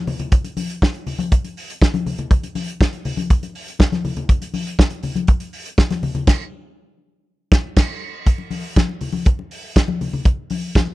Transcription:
0.07 open hi-hat medium
0.07 low conga medium
0.19 closed hi-hat soft
0.19 low conga medium
0.32 kick loud
0.32 closed hi-hat medium
0.32 muted conga soft
0.44 closed hi-hat medium
0.44 muted conga soft
0.57 open hi-hat medium
0.57 high conga medium
0.70 closed hi-hat soft
0.82 kick medium
0.82 snare loud
0.94 closed hi-hat soft
1.07 open hi-hat medium
1.07 low conga medium
1.19 closed hi-hat soft
1.19 high conga medium
1.32 kick loud
1.32 closed hi-hat medium
1.32 muted conga soft
1.45 closed hi-hat soft
1.45 muted conga soft
1.57 open hi-hat medium
1.70 closed hi-hat medium
1.81 kick loud
1.81 snare loud
1.81 muted conga soft
1.94 closed hi-hat soft
1.94 muted conga soft
1.94 high conga medium
2.06 open hi-hat medium
2.06 low conga medium
2.18 closed hi-hat soft
2.18 low conga medium
2.31 kick loud
2.31 closed hi-hat medium
2.31 muted conga soft
2.43 closed hi-hat medium
2.43 muted conga soft
2.55 open hi-hat medium
2.55 high conga medium
2.68 closed hi-hat soft
2.81 kick loud
2.81 snare loud
2.81 muted conga soft
2.93 closed hi-hat soft
2.93 muted conga soft
3.05 open hi-hat medium
3.05 low conga medium
3.17 closed hi-hat soft
3.17 high conga medium
3.30 kick loud
3.30 closed hi-hat medium
3.30 muted conga soft
3.43 closed hi-hat soft
3.43 muted conga soft
3.55 open hi-hat medium
3.68 closed hi-hat medium
3.79 kick loud
3.79 snare loud
3.79 muted conga soft
3.92 snare soft
3.92 closed hi-hat soft
3.92 high conga medium
4.05 open hi-hat medium
4.05 low conga medium
4.16 closed hi-hat soft
4.16 low conga medium
4.29 kick loud
4.29 closed hi-hat medium
4.29 muted conga soft
4.42 closed hi-hat medium
4.42 muted conga soft
4.54 open hi-hat medium
4.54 high conga medium
4.67 closed hi-hat soft
4.79 kick medium
4.79 snare loud
4.79 muted conga soft
4.90 closed hi-hat soft
4.90 muted conga soft
5.03 open hi-hat medium
5.03 low conga medium
5.15 closed hi-hat soft
5.15 high conga medium
5.27 kick loud
5.27 closed hi-hat medium
5.27 muted conga soft
5.40 closed hi-hat medium
5.53 open hi-hat medium
5.66 closed hi-hat medium
5.78 kick loud
5.78 snare loud
5.78 muted conga soft
5.90 snare soft
5.90 closed hi-hat soft
5.90 muted conga soft
5.90 high conga medium
6.03 open hi-hat medium
6.03 low conga medium
6.15 closed hi-hat soft
6.15 low conga medium
6.27 kick loud
6.27 snare medium
6.27 crash medium
7.52 kick loud
7.52 snare loud
7.76 kick loud
7.76 snare medium
7.76 crash medium
8.26 kick medium
8.26 closed hi-hat medium
8.26 muted conga soft
8.38 muted conga soft
8.51 open hi-hat medium
8.51 high conga medium
8.76 kick loud
8.76 snare loud
8.76 closed hi-hat medium
8.76 muted conga soft
8.76 high conga medium
8.89 muted conga soft
9.01 open hi-hat medium
9.01 low conga medium
9.13 high conga medium
9.25 kick loud
9.25 closed hi-hat medium
9.25 muted conga soft
9.39 muted conga soft
9.51 open hi-hat medium
9.76 kick medium
9.76 snare loud
9.76 closed hi-hat medium
9.88 muted conga soft
9.88 high conga medium
10.01 open hi-hat medium
10.01 low conga medium
10.13 low conga medium
10.25 kick loud
10.25 closed hi-hat medium
10.25 muted conga soft
10.50 open hi-hat medium
10.50 high conga medium
10.75 kick medium
10.75 snare loud
10.75 closed hi-hat medium
10.75 muted conga soft
10.75 high conga medium
10.88 muted conga soft

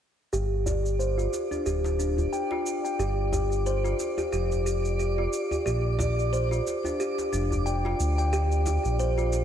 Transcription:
0.33 1.28 G1 medium
0.33 0.51 G4 medium
0.33 9.44 D5 medium
0.33 shaker soft
0.66 0.84 D5 medium
0.66 djembe slap medium
0.66 djembe bass medium
0.66 shaker medium
0.86 shaker soft
0.99 1.17 C5 medium
0.99 shaker soft
1.18 1.50 F4 medium
1.18 djembe tone soft
1.18 shaker soft
1.33 djembe slap soft
1.33 shaker medium
1.51 1.65 D4 medium
1.51 djembe tone medium
1.51 shaker soft
1.66 2.28 D1 medium
1.66 1.98 G4 medium
1.66 shaker soft
1.84 djembe slap medium
1.84 shaker soft
1.99 2.17 D4 medium
1.99 shaker medium
2.18 djembe bass medium
2.18 shaker soft
2.33 2.50 G5 medium
2.33 shaker soft
2.51 2.83 F4 medium
2.51 djembe slap medium
2.66 shaker medium
2.85 2.98 G5 medium
2.85 shaker soft
2.99 3.94 G1 medium
2.99 3.32 G4 medium
2.99 shaker soft
3.33 3.65 G4 medium
3.33 djembe slap medium
3.33 djembe bass medium
3.33 shaker medium
3.52 shaker soft
3.66 3.83 C5 medium
3.66 shaker soft
3.84 4.16 F4 medium
3.84 shaker soft
3.99 djembe slap soft
3.99 shaker medium
4.18 4.31 G4 medium
4.18 djembe tone medium
4.18 shaker soft
4.33 5.28 F1 medium
4.33 4.65 G4 medium
4.33 shaker soft
4.52 djembe tone medium
4.52 shaker soft
4.66 4.98 G4 medium
4.66 shaker medium
4.85 shaker soft
4.99 5.17 G4 medium
4.99 shaker soft
5.18 5.50 F4 medium
5.33 shaker medium
5.51 5.65 G4 medium
5.51 djembe bass medium
5.51 shaker soft
5.66 6.61 A#1 medium
5.66 5.84 G4 medium
5.66 shaker soft
5.99 6.17 D5 medium
5.99 djembe slap medium
5.99 djembe bass medium
5.99 shaker medium
6.19 shaker soft
6.33 6.51 C5 medium
6.33 shaker soft
6.51 6.83 F4 medium
6.51 djembe tone soft
6.51 shaker soft
6.67 djembe slap soft
6.67 shaker medium
6.85 6.99 D4 medium
6.85 djembe tone medium
6.85 shaker soft
7.00 7.32 G4 medium
7.00 shaker soft
7.18 djembe slap medium
7.18 shaker soft
7.33 7.94 F1 medium
7.33 7.51 D4 medium
7.33 shaker medium
7.52 djembe bass medium
7.52 shaker soft
7.66 7.83 G5 medium
7.66 shaker soft
7.85 8.17 F4 medium
7.85 djembe slap medium
8.00 8.79 D2 medium
8.00 shaker medium
8.18 8.31 G5 medium
8.18 shaker soft
8.33 8.65 G4 medium
8.33 shaker soft
8.52 shaker soft
8.66 8.98 G4 medium
8.66 djembe slap medium
8.66 djembe bass medium
8.66 shaker medium
8.85 9.44 A#1 medium
8.85 shaker soft
8.99 9.17 C5 medium
8.99 shaker soft
9.18 9.44 F4 medium
9.18 shaker soft
9.33 djembe slap soft
9.33 shaker medium

